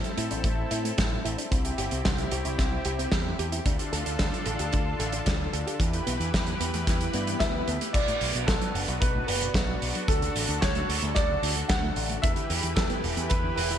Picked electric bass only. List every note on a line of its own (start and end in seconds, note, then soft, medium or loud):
0.18 0.27 A2 medium
0.31 0.41 A1 loud
0.44 0.64 A1 medium
0.71 0.91 A2 medium
0.98 1.18 A1 medium
1.25 1.35 A1 loud
1.52 1.71 C2 medium
1.78 1.88 G1 medium
1.92 2.02 C2 loud
2.05 2.25 C2 loud
2.32 2.42 C2 loud
2.45 2.55 C2 loud
2.59 2.78 C2 medium
2.85 3.05 C2 loud
3.12 3.32 E2 medium
3.39 3.59 E2 medium
3.66 3.76 D2 loud
3.93 4.02 D2 medium
4.06 4.16 D2 medium
4.19 4.29 D2 loud
4.46 4.56 A1 medium
4.60 4.69 D2 loud
4.74 4.93 D2 medium
5.00 5.19 A1 loud
5.27 5.46 D2 medium
5.53 5.63 D2 loud
5.80 6.00 E2 medium
6.07 6.17 B1 medium
6.20 6.30 E2 loud
6.34 6.53 E2 loud
6.60 6.70 E2 loud
6.74 6.84 E2 loud
6.87 7.07 E2 medium
7.14 7.34 G2 medium
7.40 7.60 D2 loud
7.67 7.77 D2 loud
7.94 8.04 B1 loud
8.21 8.31 B1 loud
8.35 8.44 B1 medium
8.48 8.58 B1 loud
8.75 8.85 F#1 medium
8.88 8.98 B1 loud
9.02 9.21 B1 medium
9.28 9.48 F#1 loud
9.54 9.74 B1 medium
9.82 9.92 B1 loud
10.08 10.28 D2 medium
10.35 10.45 A1 medium
10.49 10.59 D2 loud
10.63 10.82 D2 loud
10.89 10.99 D2 loud
11.03 11.12 D2 loud
11.16 11.36 D2 medium
11.43 11.62 D2 loud
11.70 11.89 D2 medium
11.96 12.16 A1 medium
12.24 12.33 E2 loud
12.50 12.60 E2 loud
12.63 12.73 E2 medium
12.77 12.86 E2 loud
13.04 13.13 E1 loud
13.17 13.27 E2 loud
13.31 13.50 E2 medium
13.57 13.77 E1 loud